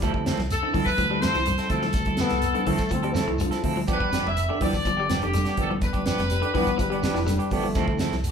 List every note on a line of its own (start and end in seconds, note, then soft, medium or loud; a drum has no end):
0.00 0.34 D2 loud
0.00 0.14 F3 medium
0.00 0.40 G3 medium
0.00 0.14 E4 medium
0.00 0.13 A4 loud
0.00 muted clean electric guitar stroke medium
0.00 kick loud
0.00 closed hi-hat medium
0.00 low conga medium
0.00 shekere medium
0.14 0.26 C4 soft
0.14 0.26 E4 medium
0.14 0.26 A4 medium
0.14 kick medium
0.26 0.40 F3 medium
0.26 0.41 C4 medium
0.26 0.41 E4 medium
0.26 0.41 A4 medium
0.26 snare medium
0.26 closed hi-hat medium
0.26 shekere loud
0.38 0.59 C2 medium
0.38 snare soft
0.38 high conga medium
0.38 shekere soft
0.50 0.85 A4 loud
0.50 closed hi-hat medium
0.50 shekere medium
0.63 0.69 D3 medium
0.63 0.74 C4 soft
0.63 0.74 E4 medium
0.63 0.74 A4 medium
0.74 0.85 D3 medium
0.74 0.87 E3 medium
0.74 0.89 F3 medium
0.74 0.89 C4 medium
0.74 0.89 E4 medium
0.74 0.89 A4 medium
0.74 kick medium
0.74 open hi-hat medium
0.74 high conga medium
0.74 low conga medium
0.74 shekere soft
0.85 1.19 B4 loud
0.85 muted fingered electric bass stroke soft
0.85 kick medium
0.85 low conga medium
0.85 shekere medium
0.98 1.30 D2 loud
0.98 1.05 F3 medium
0.98 kick medium
0.98 closed hi-hat medium
0.98 high conga medium
0.98 shekere medium
1.10 1.24 G3 medium
1.10 1.22 C4 soft
1.10 1.22 E4 medium
1.10 1.22 A4 medium
1.21 1.37 F3 medium
1.21 1.37 C4 medium
1.21 1.37 E4 medium
1.21 1.37 A4 medium
1.21 1.67 C5 loud
1.21 snare medium
1.21 closed hi-hat medium
1.21 high conga loud
1.21 shekere medium
1.34 1.56 C2 medium
1.34 1.41 E3 medium
1.34 snare soft
1.34 closed hi-hat soft
1.34 shekere soft
1.46 muted clean electric guitar stroke medium
1.46 closed hi-hat medium
1.46 high conga medium
1.46 shekere medium
1.58 1.69 C4 soft
1.58 1.69 E4 medium
1.58 1.69 A4 medium
1.58 snare soft
1.58 closed hi-hat soft
1.69 1.92 D2 medium
1.69 1.85 F3 medium
1.69 1.85 C4 medium
1.69 1.85 E4 medium
1.69 3.60 A4 loud
1.69 1.85 A4 medium
1.69 kick medium
1.69 closed hi-hat medium
1.69 shekere soft
1.82 1.89 F3 medium
1.82 snare soft
1.82 high conga medium
1.93 2.26 D2 medium
1.93 kick loud
1.93 snare soft
1.93 closed hi-hat medium
1.93 low conga medium
1.93 shekere medium
2.05 2.18 E4 medium
2.05 2.19 A4 medium
2.05 muted clean electric guitar stroke soft
2.05 kick medium
2.05 closed hi-hat soft
2.05 high conga medium
2.17 2.34 F3 medium
2.17 2.69 B3 loud
2.17 2.34 C4 medium
2.17 2.34 E4 medium
2.17 2.34 A4 medium
2.17 snare medium
2.17 closed hi-hat soft
2.17 shekere medium
2.29 2.53 C2 medium
2.29 snare soft
2.29 closed hi-hat soft
2.29 high conga medium
2.29 shekere soft
2.42 closed hi-hat medium
2.42 shekere medium
2.54 2.61 D3 medium
2.54 2.66 C4 soft
2.54 2.66 E4 medium
2.54 2.66 A4 medium
2.54 closed hi-hat soft
2.54 high conga medium
2.66 2.77 D3 medium
2.66 2.80 E3 medium
2.66 2.82 F3 medium
2.66 2.93 A3 loud
2.66 2.82 C4 medium
2.66 2.82 E4 medium
2.66 2.82 A4 medium
2.66 kick medium
2.66 open hi-hat medium
2.66 high conga medium
2.66 low conga medium
2.66 shekere soft
2.78 kick medium
2.78 snare soft
2.78 closed hi-hat soft
2.78 shekere medium
2.89 3.23 D2 loud
2.89 2.98 F3 medium
2.89 3.18 C4 loud
2.89 kick medium
2.89 closed hi-hat medium
2.89 shekere medium
3.02 3.17 G3 medium
3.02 3.13 C4 medium
3.02 3.13 E4 medium
3.02 3.14 A4 medium
3.02 closed hi-hat soft
3.14 3.29 F3 medium
3.14 3.43 A3 loud
3.14 3.30 C4 medium
3.14 3.30 E4 medium
3.14 3.30 A4 medium
3.14 snare medium
3.14 closed hi-hat medium
3.14 high conga medium
3.14 shekere medium
3.27 3.49 C2 medium
3.27 3.34 E3 medium
3.27 shekere soft
3.39 3.54 D3 medium
3.39 3.77 F3 medium
3.39 closed hi-hat medium
3.39 high conga medium
3.39 shekere medium
3.51 3.63 C4 medium
3.51 3.64 E4 medium
3.51 3.64 A4 medium
3.51 snare soft
3.51 closed hi-hat soft
3.64 3.85 D2 medium
3.64 3.79 F3 medium
3.64 3.79 C4 medium
3.64 3.79 E4 medium
3.64 3.79 A4 medium
3.64 kick medium
3.64 open hi-hat medium
3.64 shekere soft
3.76 3.84 F3 medium
3.76 high conga medium
3.87 4.21 G1 medium
3.87 4.00 F3 medium
3.87 4.00 B3 medium
3.87 4.00 D4 medium
3.87 3.99 G4 medium
3.87 kick medium
3.87 closed hi-hat medium
3.87 low conga medium
3.87 shekere medium
3.93 4.25 B4 loud
4.00 4.12 D4 soft
4.00 4.12 G4 medium
4.00 kick medium
4.00 high conga medium
4.12 4.27 F3 medium
4.12 4.28 B3 medium
4.12 4.28 D4 medium
4.12 4.28 G4 medium
4.12 snare medium
4.12 closed hi-hat medium
4.12 shekere medium
4.25 4.46 F1 medium
4.25 4.60 E5 loud
4.25 high conga medium
4.25 shekere soft
4.37 closed hi-hat medium
4.37 shekere medium
4.49 4.56 D3 medium
4.49 4.60 B3 soft
4.49 4.60 D4 soft
4.49 4.60 G4 medium
4.60 4.72 G2 medium
4.60 4.75 E3 medium
4.60 4.75 F3 medium
4.60 4.76 B3 medium
4.60 4.76 D4 medium
4.60 4.76 G4 medium
4.60 5.19 D5 loud
4.60 kick medium
4.60 open hi-hat medium
4.60 high conga medium
4.60 low conga medium
4.60 shekere soft
4.73 muted fingered electric bass stroke soft
4.73 kick medium
4.73 low conga medium
4.73 shekere medium
4.85 5.17 G1 loud
4.85 4.93 F3 medium
4.85 kick medium
4.85 closed hi-hat medium
4.85 high conga medium
4.85 shekere medium
4.97 5.12 G3 medium
4.97 5.08 B3 soft
4.97 5.08 D4 soft
4.97 5.09 G4 medium
5.09 5.24 F3 medium
5.09 5.24 B3 medium
5.09 5.24 D4 medium
5.09 5.24 G4 medium
5.09 snare medium
5.09 closed hi-hat medium
5.09 high conga loud
5.09 shekere loud
5.22 5.44 F1 medium
5.22 5.29 D3 medium
5.22 5.57 G4 medium
5.22 closed hi-hat soft
5.22 shekere soft
5.33 5.47 D3 medium
5.33 closed hi-hat medium
5.33 high conga medium
5.33 shekere medium
5.45 5.56 B3 medium
5.45 5.57 D4 medium
5.45 5.57 G4 medium
5.45 snare soft
5.45 closed hi-hat soft
5.57 5.79 G1 medium
5.57 5.72 F3 medium
5.57 5.72 B3 medium
5.57 5.72 D4 medium
5.57 5.73 G4 medium
5.57 kick medium
5.57 closed hi-hat medium
5.57 shekere soft
5.61 5.71 A4 medium
5.71 5.77 F3 medium
5.71 high conga medium
5.81 6.14 G1 medium
5.81 7.49 B4 loud
5.81 kick medium
5.81 closed hi-hat medium
5.81 low conga medium
5.81 shekere medium
5.93 6.05 D4 medium
5.93 6.06 G4 medium
5.93 kick medium
5.93 closed hi-hat soft
5.93 high conga medium
6.05 6.20 F3 medium
6.05 6.21 B3 medium
6.05 6.21 D4 medium
6.05 6.21 G4 medium
6.05 snare medium
6.05 closed hi-hat soft
6.05 shekere medium
6.18 6.40 F1 medium
6.18 snare soft
6.18 closed hi-hat soft
6.18 high conga medium
6.18 shekere soft
6.30 6.41 G3 medium
6.30 closed hi-hat medium
6.30 shekere medium
6.42 6.49 D3 medium
6.42 6.54 D4 soft
6.42 6.54 G4 medium
6.42 muted clean electric guitar stroke medium
6.42 closed hi-hat soft
6.54 6.66 G2 medium
6.54 6.67 E3 medium
6.54 6.69 F3 medium
6.54 6.69 B3 medium
6.54 6.82 B3 loud
6.54 6.69 D4 medium
6.54 6.70 G4 medium
6.54 kick medium
6.54 open hi-hat medium
6.54 high conga medium
6.54 low conga medium
6.54 shekere soft
6.67 muted fingered electric bass stroke soft
6.67 kick medium
6.67 closed hi-hat soft
6.67 shekere medium
6.78 7.11 G1 loud
6.78 6.85 F3 medium
6.78 7.03 G3 medium
6.78 kick medium
6.78 closed hi-hat medium
6.78 shekere medium
6.90 7.04 G3 medium
6.90 7.03 B3 soft
6.90 7.03 D4 medium
6.90 7.04 G4 medium
6.90 closed hi-hat soft
7.03 7.18 F3 medium
7.03 7.54 G3 loud
7.03 7.18 B3 medium
7.03 7.19 D4 medium
7.03 7.19 G4 medium
7.03 snare medium
7.03 closed hi-hat medium
7.03 high conga medium
7.03 shekere medium
7.14 7.37 F1 medium
7.14 7.21 E3 medium
7.14 snare soft
7.14 shekere soft
7.26 7.40 D3 medium
7.26 snare soft
7.26 closed hi-hat medium
7.26 high conga medium
7.26 shekere medium
7.39 7.51 D4 medium
7.39 7.52 G4 medium
7.39 closed hi-hat soft
7.50 7.73 G1 loud
7.50 7.66 F3 medium
7.50 8.13 A3 loud
7.50 7.67 B3 medium
7.50 7.67 D4 medium
7.50 7.67 G4 medium
7.50 kick medium
7.50 open hi-hat medium
7.50 shekere soft
7.64 7.70 F3 medium
7.64 high conga medium
7.75 8.08 D2 medium
7.75 7.88 F3 loud
7.75 7.88 C4 medium
7.75 7.88 E4 medium
7.75 7.87 A4 loud
7.75 kick medium
7.75 snare soft
7.75 closed hi-hat medium
7.75 low conga medium
7.75 shekere medium
7.88 8.00 C4 soft
7.88 8.00 E4 medium
7.88 8.00 A4 medium
7.88 kick medium
7.98 8.15 F3 medium
7.98 8.15 C4 medium
7.98 8.15 E4 medium
7.98 8.15 A4 medium
7.98 snare medium
7.98 closed hi-hat medium
7.98 shekere medium
8.11 8.31 C2 medium
8.11 snare soft
8.11 high conga medium
8.11 shekere soft
8.24 closed hi-hat medium
8.24 shekere medium